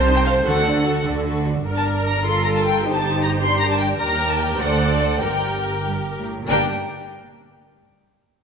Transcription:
Already playing: double bass section C2, cello section C3, viola section C5
0.06 violin section D#4 C5
0.15 violin section G5
0.25 violin section C4 A4 F5
0.45 double bass section D2, cello section D3, violin section F#4 A4 F#5, viola section A4
0.65 violin section D4 F#4
0.85 violin section F#4 A4
1.04 double bass section D2, cello section D3, violin section D4 F#4
1.26 violin section F#4 A4
1.46 violin section D4 F#4
1.65 double bass section G1, cello section G2, violin section D4 A#4, viola section A#4
1.77 violin section A5
2.07 violin section A#5
2.24 violin section F4 C6, viola section A4
2.44 violin section A#5
2.55 violin section A5
2.65 violin section G5
2.83 violin section D#4 C5, viola section G4
2.94 violin section A5
3.23 violin section A#5
3.41 violin section D4 A#4 C6
3.60 violin section A#5
3.70 violin section A5
3.80 violin section G5
3.99 double bass section D#2, cello section D#2, violin section G4 A#4 A#5, viola section A#4
4.30 violin section A5
4.39 violin section G5
4.59 double bass section D2, cello section D2, violin section A4 C5 F#5, viola section D5
4.90 violin section D5
5.01 violin section F#5
5.21 double bass section G1, cello section G2, violin section G4 A#4 G5, viola section A#4
5.86 cello section G2
6.19 cello section A2
6.40 cello section A#2
6.48 double bass section G1, cello section G2, viola section A#3 D4, violin section G4 A#4 G5

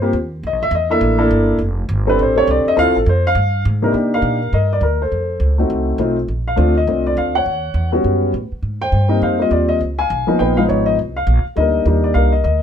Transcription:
Already playing: upright bass G2, upright piano C5
0.02 upright piano A#3 C4 F4 G4
0.13 upright bass D#2
0.43 upright bass C2, upright piano D#5
0.53 upright bass A#1
0.62 upright bass G1, upright piano E5
0.71 upright bass E2, upright piano D#5
0.90 upright piano A#3 D4 E4 A4 E5
1.01 upright bass A1
1.18 upright piano A#3 D4 E4 A4
1.31 upright bass G1
1.59 upright bass F1
1.89 upright bass G1
2.07 upright piano C4 D4 G4 A4 B4
2.19 upright bass A1, upright piano C5
2.36 upright piano C4 D4 G4 A4 C#5
2.47 upright bass C2, upright piano D5
2.65 upright piano D#5, muted upright bass stroke
2.76 upright bass D2, upright piano C4 E4 F4 A4 F5
2.87 upright bass C2
2.96 upright bass A1, upright piano A4
3.06 upright bass F2, upright piano C5
3.27 upright piano F5
3.35 upright bass G2
3.65 upright bass G#2
3.82 upright piano C3 A#3 D4 D#4 A#4
3.92 upright bass C3, upright piano A#3 D4 D#4 G4
4.14 upright piano A#4 F5
4.22 upright bass A#2
4.53 upright bass G2, upright piano A#4 D#5
4.73 upright piano D5
4.81 upright bass D2, upright piano A#4
5.02 upright piano A4 C5
5.12 upright bass F2
5.40 upright bass C#2
5.58 upright piano A3 C4 D#4 F#4
5.70 upright bass C2
5.98 upright bass B1, upright piano A3 C4 D#4 F4
6.28 upright bass A#1
6.48 upright piano F5
6.56 upright bass D2, upright piano A3 C4 D4 F4
6.77 upright piano D#5
6.87 upright bass C2, upright piano A3 C4 D4 F4
7.07 upright piano D5
7.17 upright bass D2, upright piano F5
7.35 upright piano C#5 F#5
7.46 upright bass D#2
7.74 upright bass E2
7.92 upright piano G3 B3 C#4 F#4
8.04 upright bass F#2
8.34 upright bass A2
8.52 muted upright bass stroke
8.63 upright bass G#2
8.82 upright piano C5 G5
8.92 upright bass G2
9.08 upright piano G3 A#3 C4 D#4
9.22 upright bass F2, upright piano C5 F5
9.39 upright piano G3 A#3 C4 F4 D#5
9.51 upright bass D#2, upright piano D5
9.69 upright piano D#5
9.81 upright bass C#2
9.99 upright piano F5 G#5
10.10 upright bass B1
10.27 upright piano F3 A#3 B3 D#4, muted upright bass stroke
10.39 upright bass A#1, upright piano B4 G5
10.57 upright piano F3 G#3 B3 D#4 F5
10.69 upright bass G#1, upright piano C#5
10.86 upright piano D#5
10.99 upright bass C2
11.16 upright piano F5
11.27 upright bass A#1
11.45 muted upright bass stroke
11.56 upright bass D2, upright piano G3 A#3 D4 D#4 D#5
11.60 upright piano A#4
11.86 upright bass D#2, upright piano G3 A#3 D4 D#4
12.04 upright piano D5
12.14 upright bass C2, upright piano A#4 F5
12.32 upright piano D#5
12.44 upright bass D2, upright piano D#5

